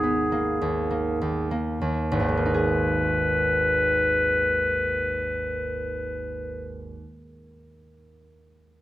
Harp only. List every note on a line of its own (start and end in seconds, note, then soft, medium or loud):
0.00 1.45 G#1 medium
0.00 0.60 D#2 soft
0.00 0.31 A#3 soft
0.00 3.93 B3 soft
0.00 2.44 D#4 soft
0.00 2.53 G#4 soft
0.32 0.89 A#3 soft
0.61 1.20 D#2 soft
0.91 1.50 A#3 soft
1.21 1.80 D#2 soft
1.51 2.36 A#3 soft
1.81 2.16 D#2 soft
2.12 6.93 G#1 medium
2.20 7.01 D#2 soft
2.29 7.10 G#3 soft
2.37 7.18 A#3 soft
2.46 7.27 D#4 soft
2.54 7.35 G#4 soft